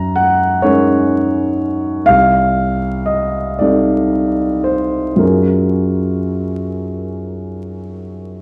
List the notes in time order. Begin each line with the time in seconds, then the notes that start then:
Already playing: F#2 A#5
0.16 F#5
0.62 G#3 C#4 D#4 A#4 C#5
2.06 C2 F5
3.06 D#5
3.59 G3 C4 D#4 A4 D5
4.64 C5
5.16 F#2 F#3 C#4 F4 G#4 A#4